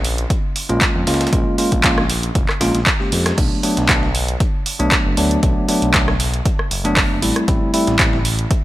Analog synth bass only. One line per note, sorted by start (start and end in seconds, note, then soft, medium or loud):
0.00 0.25 A#1 loud
0.69 0.78 A#1 loud
0.95 1.04 F2 medium
1.07 1.27 C#2 medium
1.33 1.43 A#1 loud
1.72 2.31 A#1 loud
2.35 2.46 F1 medium
2.61 2.71 A#1 loud
2.75 2.84 A#1 medium
3.12 3.32 F2 loud
3.38 3.48 B1 loud
3.77 4.36 B1 loud
4.80 4.89 B1 loud
5.05 5.14 F#1 medium
5.17 5.37 D2 medium
5.43 5.53 B1 loud
5.82 6.41 B1 loud
6.71 7.05 F#1 medium
7.11 7.20 F#1 medium
7.22 7.33 A1 medium
7.48 7.58 A1 loud
7.87 8.46 A1 loud